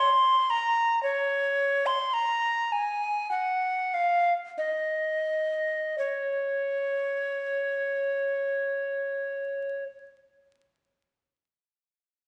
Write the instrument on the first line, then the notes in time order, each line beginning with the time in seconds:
recorder
Already playing: C6
0.50 A#5
1.03 C#5
1.86 C6
2.14 A#5
2.72 G#5
3.31 F#5
3.94 F5
4.58 D#5
5.98 C#5